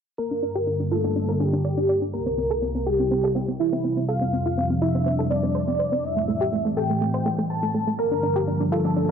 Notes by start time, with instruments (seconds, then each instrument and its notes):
0.18 analog synth pad G2 D3 A#3 F4 A5, synth pluck A#4, analog synth lead A#4, shaker
0.31 synth pluck D4, shaker
0.43 synth pluck D4, shaker
0.55 synth pluck G4, shaker
0.67 synth pluck D4, shaker
0.79 synth pluck D4, closed hi-hat, shaker
0.91 synth pluck F4, analog synth lead A4, shaker
1.04 synth pluck D4, snare, shaker
1.16 synth pluck D4, shaker
1.28 synth pluck A#4, snare, shaker
1.39 synth pluck D4, analog synth lead G4, snare, shaker
1.53 synth pluck D4, shaker
1.65 synth pluck D5, shaker
1.77 synth pluck D4, shaker
1.89 synth pluck D5, shaker
2.02 synth pluck D4, shaker
2.13 analog synth pad C2 C3 G3 E4 G4, analog synth lead A#4, shaker
2.26 synth pluck C4, shaker
2.37 synth pluck C4, shaker
2.51 synth pluck A4, shaker
2.62 synth pluck C4, open hi-hat, shaker
2.75 synth pluck C4, shaker
2.87 analog synth lead G4, synth pluck G4, shaker
2.99 synth pluck C4, shaker
3.11 synth pluck C4, shaker
3.24 synth pluck A4, snare, shaker
3.35 synth pluck C4, snare, shaker
3.48 synth pluck C4, shaker
3.60 analog synth lead E4, shaker
3.73 synth pluck C4, shaker
3.83 synth pluck C4, shaker
3.97 synth pluck C4, closed hi-hat, shaker
4.08 analog synth pad F2 D4 A5, synth pluck A4, analog synth lead F5, shaker
4.21 synth pluck C4, shaker
4.32 synth pluck C4, shaker
4.46 synth pluck F4, shaker
4.57 synth pluck C4, shaker
4.70 synth pluck C4, closed hi-hat, shaker
4.82 synth pluck E4, analog synth lead E5, shaker
4.95 synth pluck C4, snare, shaker
5.06 synth pluck C4, shaker
5.19 synth pluck A4, snare, shaker
5.30 synth pluck C4, analog synth lead D5, snare, shaker
5.43 synth pluck C4, shaker
5.55 synth pluck C5, shaker
5.68 synth pluck C4, shaker
5.79 synth pluck C5, shaker
5.92 synth pluck C4, shaker
6.03 analog synth pad A2 E3 C4, analog synth lead E5, shaker
6.16 synth pluck A3, shaker
6.28 synth pluck A3, shaker
6.41 synth pluck G4, closed hi-hat, shaker
6.52 synth pluck A3, open hi-hat, shaker
6.65 synth pluck A3, shaker
6.77 synth pluck A4, analog synth lead G5, shaker
6.90 synth pluck A3, shaker
7.01 synth pluck A3, shaker
7.14 synth pluck C5, snare, shaker
7.26 synth pluck A3, snare, shaker
7.38 synth pluck A3, shaker
7.50 analog synth lead A5, shaker
7.63 synth pluck A3, shaker
7.74 synth pluck A3, shaker
7.87 synth pluck A3, closed hi-hat, shaker
7.99 analog synth pad G2 D3 F3 A#3, synth pluck A#4, analog synth lead A#4, shaker
8.12 synth pluck D4, shaker
8.23 synth pluck D4, shaker
8.36 synth pluck G4, shaker
8.48 synth pluck D4, shaker
8.60 synth pluck D4, closed hi-hat, shaker
8.72 synth pluck F4, analog synth lead A4, shaker
8.85 synth pluck D4, snare, shaker
8.96 synth pluck D4, shaker